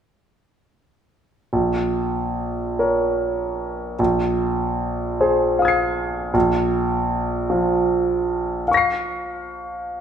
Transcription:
1.53 3.94 A#1 soft
2.79 3.95 A#4 soft
2.79 3.95 C#5 soft
3.99 6.31 A#1 soft
5.20 6.32 G#4 soft
5.20 6.32 C5 soft
5.59 6.31 F5 soft
5.59 6.33 D#6 soft
5.65 6.34 G#6 soft
5.65 6.36 C7 soft
6.34 8.63 A#1 medium
7.50 10.01 F3 soft
8.68 10.01 F5 soft
8.68 10.01 C#6 soft
8.74 10.01 A#6 soft
8.74 10.01 C7 soft

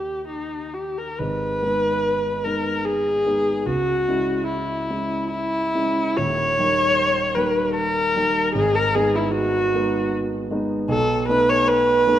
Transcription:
0.00 1.13 D#2 soft
0.00 1.15 A#3 soft
0.00 1.15 D#4 soft
0.00 0.25 G4 medium
0.28 0.75 D#4 medium
0.74 0.99 G4 medium
0.98 1.20 A#4 medium
1.18 1.60 G#1 soft
1.18 1.61 G#2 soft
1.18 2.46 B4 medium
1.63 2.41 G#3 soft
1.63 2.41 B3 soft
1.63 2.42 D#4 soft
2.44 3.22 G#3 soft
2.44 3.22 B3 soft
2.44 3.22 D#4 soft
2.44 2.86 A#4 medium
2.85 3.67 G#4 medium
3.26 3.62 G#3 soft
3.26 3.63 B3 soft
3.26 3.63 D#4 soft
3.66 4.06 C#2 soft
3.66 4.47 F#4 medium
4.08 4.86 G#3 soft
4.08 4.86 C#4 soft
4.08 4.87 E4 soft
4.47 5.28 E4 medium
4.90 5.70 G#3 soft
4.90 5.71 C#4 soft
4.90 5.71 E4 soft
5.31 6.19 E4 medium
5.75 6.15 G#3 soft
5.75 6.15 C#4 soft
5.75 6.15 E4 soft
6.17 6.57 D#1 medium
6.17 6.57 D#2 medium
6.17 7.36 C#5 loud
6.59 7.32 G3 soft
6.59 7.32 A#3 soft
6.59 7.33 D#4 soft
7.35 8.12 G3 soft
7.35 8.12 A#3 soft
7.35 8.12 D#4 soft
7.35 7.74 B4 medium
7.75 8.53 A#4 loud
8.16 8.52 G3 soft
8.16 8.52 A#3 soft
8.16 8.52 D#4 soft
8.54 8.94 G#1 medium
8.54 8.94 G#2 medium
8.54 8.77 G#4 medium
8.75 8.96 A#4 loud
8.95 9.71 G#3 medium
8.95 9.71 B3 soft
8.95 9.71 D#4 medium
8.95 9.17 G#4 medium
9.15 9.34 E4 medium
9.34 10.11 F#4 medium
9.75 10.47 G#3 medium
9.75 10.48 B3 soft
9.75 10.48 D#4 soft
10.51 10.86 G#3 soft
10.51 10.86 B3 soft
10.51 10.86 D#4 medium
10.88 11.27 B1 medium
10.88 11.28 B2 medium
10.88 11.26 A4 loud
11.29 12.03 A3 medium
11.29 12.04 B3 medium
11.29 12.04 D#4 medium
11.29 11.51 B4 loud
11.49 11.70 C#5 loud
11.68 12.19 B4 loud
12.07 12.19 A3 soft
12.07 12.19 B3 soft
12.07 12.19 D#4 medium

